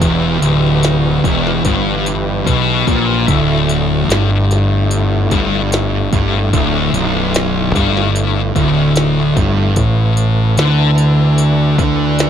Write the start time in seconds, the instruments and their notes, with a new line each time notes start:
Already playing: tonewheel organ E3 B4
0.00 fingered electric bass E1, distorted electric guitar E2, tonewheel organ G4, kick, open hi-hat
0.41 fingered electric bass D1, distorted electric guitar D2, open hi-hat
0.83 snare, open hi-hat
1.24 fingered electric bass E1, distorted electric guitar E2, kick, open hi-hat
1.47 snare
1.65 fingered electric bass G1, distorted electric guitar G2, kick, open hi-hat
2.06 open hi-hat
2.47 fingered electric bass B1, distorted electric guitar B2, kick, open hi-hat
2.87 fingered electric bass A#1, distorted electric guitar A#2, kick, open hi-hat
3.27 fingered electric bass D1, distorted electric guitar D2, tonewheel organ D3 A3 E4, kick, open hi-hat
3.69 open hi-hat
4.09 fingered electric bass G1, distorted electric guitar G2, snare, open hi-hat
4.51 snare, open hi-hat
4.91 open hi-hat
5.31 fingered electric bass G1, distorted electric guitar G2, kick, open hi-hat
5.72 snare, open hi-hat
6.13 fingered electric bass G1, distorted electric guitar G2, kick, open hi-hat
6.53 fingered electric bass D1, distorted electric guitar D2, kick, open hi-hat
6.94 fingered electric bass B0, distorted electric guitar B1, open hi-hat
7.34 snare, open hi-hat
7.75 fingered electric bass G1, distorted electric guitar G2, kick, open hi-hat
7.97 snare
8.16 open hi-hat
8.55 fingered electric bass D1, distorted electric guitar D2, kick, open hi-hat
8.96 snare, open hi-hat
9.36 fingered electric bass G1, distorted electric guitar G2, kick, open hi-hat
9.76 fingered electric bass A1, distorted electric guitar A2, tonewheel organ B4, kick, open hi-hat
10.17 open hi-hat
10.57 fingered electric bass D2, distorted electric guitar D3, snare, open hi-hat
10.98 open hi-hat
11.38 open hi-hat
11.78 fingered electric bass D2, distorted electric guitar D3, kick, open hi-hat
12.19 snare, open hi-hat